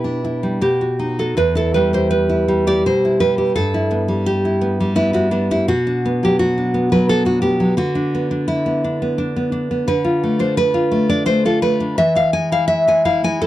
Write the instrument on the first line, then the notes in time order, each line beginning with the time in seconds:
nylon-string guitar
Already playing: B2 E4 G4 B4
0.04 D4
0.24 E4
0.43 G3
0.61 B2 G4
0.81 F#4
0.99 D#4
1.19 F#4 A4
1.37 E2 B4
1.55 E4 A4
1.74 G3 B4
1.93 G4 C5
2.11 B4
2.29 E4
2.48 G3
2.67 G4 D5
2.86 B2 C5
3.05 E4
3.20 G3 B4
3.38 G4
3.56 G2 A4
3.74 E4
3.91 B3
4.08 G3
4.26 G4
4.45 E4
4.61 B3
4.80 G3
4.95 B3 E4
5.13 E4 F#4
5.31 B3 D4
5.51 G3 E4
5.68 B2 F#4
5.87 D4
6.05 B3
6.23 F#3 G4
6.39 F#4
6.58 D4
6.74 B3
6.92 F#3 B4
7.09 B3 A4
7.25 D4 F#4
7.42 B3 G4
7.60 F#3
7.77 D3 F#4
7.95 D4
8.14 B3
8.31 D4
8.48 E4
8.66 B3
8.84 D4
9.02 B3
9.18 D4
9.36 B3
9.52 D4
9.71 B3
9.88 D3 B4
10.04 F4
10.24 A3
10.39 D4 C5
10.57 B4
10.74 F4
10.91 A3
11.09 D4 D5
11.26 A3 C5
11.45 F4 A4
11.62 A3 B4
11.80 D4
11.98 E3 E5
12.15 E4 F5
12.33 G#3 G#5
12.52 E4 F5
12.68 E5
12.87 G#3 G#5
13.05 E4 F5
13.24 G#3 G#5
13.41 E4 A4